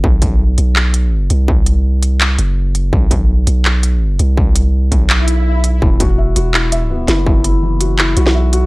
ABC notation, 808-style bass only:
X:1
M:4/4
L:1/8
Q:"Swing 16ths" 1/4=166
K:Bphr
V:1 name="808-style bass" clef=bass
B,,,3 B,,,4 C,,- | C,,4- C,, F,,,3 | B,,,3 B,,,4 C,,- | C,,3 B,,,4- B,,, |
E,,,3 E,,,4 F,,,- | F,,,4- F,,, B,,,3 |]